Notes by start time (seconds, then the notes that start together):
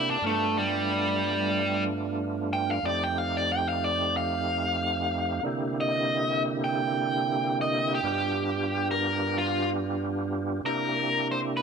Already playing: C3 A#3 D4 E4 G4
0.10 D4
0.21 G2 A3 B3 D4 F4
0.26 A3
0.58 G3
2.53 G5
2.71 F5
2.83 F2 A3 C4 D#4 G4 D5
3.04 G5
3.18 F5
3.37 D5
3.52 G5
3.69 F5
3.84 D5
4.17 F5
5.43 C3 D3 A#3 E4 G4
5.81 D#5
6.64 G5
7.61 D#5
7.94 G4
8.03 G2 B3 D4 F4 G4
8.91 A#4
9.38 F4
10.64 C3 A#3 D4 E4 G4 A#4
11.32 C5
11.57 B4